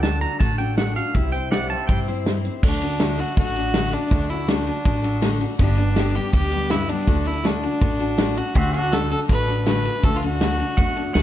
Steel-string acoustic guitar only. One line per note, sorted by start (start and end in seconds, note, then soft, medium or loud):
0.02 0.21 A3 medium
0.02 0.21 D4 medium
0.02 0.20 F#4 medium
0.02 0.19 A4 medium
0.20 0.39 D4 soft
0.20 0.39 F#4 soft
0.20 0.40 A4 medium
0.40 0.58 D3 medium
0.40 0.59 A3 medium
0.40 0.59 D4 medium
0.40 0.58 F#4 medium
0.40 0.57 A4 medium
0.58 0.77 D4 soft
0.58 0.77 F#4 medium
0.58 0.77 A4 medium
0.77 0.96 A3 medium
0.77 0.96 D4 medium
0.77 0.95 F#4 medium
0.77 0.94 A4 medium
0.95 1.15 D4 soft
0.95 1.15 F#4 medium
0.95 1.14 A4 medium
1.15 1.33 C3 medium
1.15 1.33 G3 medium
1.15 1.33 C4 medium
1.15 1.33 E4 medium
1.15 1.32 C5 medium
1.33 1.51 C4 soft
1.33 1.52 E4 medium
1.33 1.52 C5 medium
1.52 1.70 G3 medium
1.52 1.71 C4 medium
1.52 1.70 E4 medium
1.52 1.69 C5 medium
1.71 1.89 C4 soft
1.71 1.89 E4 soft
1.71 1.89 C5 medium
1.89 2.07 C3 medium
1.89 2.08 G3 medium
1.89 2.08 C4 medium
1.89 2.07 E4 medium
1.89 2.07 C5 loud
2.08 2.26 C4 soft
2.08 2.27 E4 medium
2.08 2.26 C5 medium
2.26 2.45 G3 medium
2.26 2.45 C4 medium
2.26 2.44 E4 medium
2.26 2.43 C5 medium
2.44 2.63 C4 soft
2.44 2.64 E4 medium
2.44 2.63 C5 medium
2.63 2.82 D3 medium
2.63 2.82 A3 medium
2.63 2.82 D4 medium
2.63 2.81 F#4 medium
2.63 2.80 A4 loud
2.81 2.99 D4 soft
2.81 3.00 F#4 soft
2.81 3.00 A4 medium
3.00 3.18 D3 medium
3.00 3.19 A3 medium
3.00 3.19 D4 loud
3.00 3.18 F#4 medium
3.00 3.17 A4 medium
3.18 3.36 D4 soft
3.18 3.37 F#4 soft
3.18 3.37 A4 medium
3.37 3.55 A3 medium
3.37 3.56 D4 medium
3.37 3.55 F#4 medium
3.37 3.54 A4 medium
3.55 3.74 D4 medium
3.55 3.74 F#4 medium
3.55 3.74 A4 medium
3.74 3.93 D3 medium
3.74 3.93 A3 medium
3.74 3.93 D4 medium
3.74 3.92 F#4 medium
3.74 3.92 A4 medium
3.93 4.11 D4 medium
3.93 4.12 F#4 medium
3.93 4.11 A4 medium
4.12 4.30 D3 medium
4.12 4.30 A3 medium
4.12 4.30 D4 medium
4.12 4.30 F#4 medium
4.12 4.28 A4 loud
4.30 4.47 D4 soft
4.30 4.47 F#4 medium
4.30 4.48 A4 medium
4.48 4.67 D3 medium
4.48 4.67 A3 medium
4.48 4.67 D4 medium
4.48 4.66 F#4 loud
4.48 4.65 A4 medium
4.66 4.84 D4 soft
4.66 4.85 F#4 soft
4.66 4.85 A4 medium
4.85 5.03 A3 medium
4.85 5.03 D4 medium
4.85 5.02 F#4 medium
4.85 5.01 A4 medium
5.02 5.21 D4 medium
5.02 5.21 F#4 medium
5.02 5.21 A4 medium
5.21 5.40 D3 medium
5.21 5.41 A3 medium
5.21 5.40 D4 medium
5.21 5.40 F#4 loud
5.21 5.38 A4 medium
5.40 5.58 D4 medium
5.40 5.59 F#4 medium
5.40 5.59 A4 medium
5.58 5.77 G2 medium
5.58 5.78 D3 medium
5.58 5.78 G3 medium
5.58 5.78 B3 medium
5.58 5.77 D4 loud
5.58 5.76 G4 loud
5.78 5.95 G3 soft
5.78 5.96 B3 medium
5.78 5.96 D4 medium
5.78 5.96 G4 medium
5.96 6.15 G2 medium
5.96 6.15 D3 medium
5.96 6.15 G3 medium
5.96 6.14 B3 medium
5.96 6.14 D4 medium
5.96 6.13 G4 loud
6.14 6.32 G3 soft
6.14 6.33 B3 soft
6.14 6.33 D4 medium
6.14 6.33 G4 medium
6.33 6.52 G3 medium
6.33 6.52 B3 medium
6.33 6.51 D4 medium
6.33 6.50 G4 medium
6.51 6.69 G3 medium
6.51 6.70 B3 medium
6.51 6.70 D4 medium
6.51 6.70 G4 medium
6.70 6.89 G2 medium
6.70 6.89 D3 medium
6.70 6.89 G3 medium
6.70 6.89 B3 medium
6.70 6.88 D4 medium
6.70 6.87 G4 medium
6.88 7.07 G3 soft
6.88 7.07 B3 soft
6.88 7.06 D4 medium
6.88 7.07 G4 medium
7.07 7.26 D3 medium
7.07 7.26 A3 medium
7.07 7.26 D4 medium
7.07 7.25 F#4 medium
7.07 7.24 A4 medium
7.25 7.43 D4 soft
7.25 7.43 F#4 medium
7.25 7.43 A4 medium
7.43 7.62 D3 medium
7.43 7.63 A3 medium
7.43 7.62 D4 medium
7.43 7.62 F#4 medium
7.43 7.61 A4 medium
7.62 7.80 D4 soft
7.62 7.81 F#4 medium
7.62 7.81 A4 soft
7.81 8.00 A3 medium
7.81 8.00 D4 medium
7.81 7.99 F#4 medium
7.81 7.98 A4 medium
7.99 8.17 D4 medium
7.99 8.18 F#4 medium
7.99 8.18 A4 medium
8.18 8.37 D3 medium
8.18 8.37 A3 medium
8.18 8.37 D4 medium
8.18 8.36 F#4 loud
8.18 8.35 A4 loud
8.36 8.54 D4 soft
8.36 8.54 F#4 medium
8.36 8.54 A4 medium
8.54 8.73 D3 medium
8.54 8.73 A3 loud
8.54 8.74 D4 loud
8.54 8.73 F#4 medium
8.54 8.72 A4 medium
8.73 8.91 D4 soft
8.73 8.92 F#4 medium
8.73 8.92 A4 medium
8.92 9.11 D3 medium
8.92 9.11 A3 medium
8.92 9.10 D4 medium
8.92 9.09 F#4 medium
8.92 9.08 A4 medium
9.10 9.28 D4 soft
9.10 9.28 F#4 soft
9.10 9.29 A4 medium
9.28 9.47 A3 medium
9.28 9.48 D4 medium
9.28 9.47 F#4 medium
9.28 9.46 A4 medium
9.47 9.65 D4 soft
9.47 9.66 F#4 medium
9.47 9.66 A4 medium
9.66 9.85 D3 medium
9.66 9.85 A3 medium
9.66 9.85 D4 medium
9.66 9.84 F#4 medium
9.66 9.83 A4 medium
9.85 10.03 D4 soft
9.85 10.03 F#4 soft
9.85 10.03 A4 medium
10.03 10.22 D3 medium
10.03 10.22 A3 medium
10.03 10.22 D4 medium
10.03 10.22 F#4 medium
10.03 10.21 A4 medium
10.22 10.40 D4 medium
10.22 10.40 F#4 medium
10.22 10.40 A4 medium
10.41 10.59 D3 medium
10.41 10.59 A3 medium
10.41 10.59 D4 loud
10.41 10.59 F#4 loud
10.41 10.58 A4 medium
10.59 10.77 D4 soft
10.59 10.77 F#4 medium
10.59 10.78 A4 medium
10.77 10.96 A3 medium
10.77 10.96 D4 medium
10.77 10.95 F#4 medium
10.77 10.94 A4 medium
10.96 11.14 D4 medium
10.96 11.14 F#4 medium
10.96 11.14 A4 medium
11.15 11.23 D3 medium
11.15 11.23 A3 medium
11.15 11.23 D4 medium
11.15 11.23 F#4 medium
11.15 11.23 A4 loud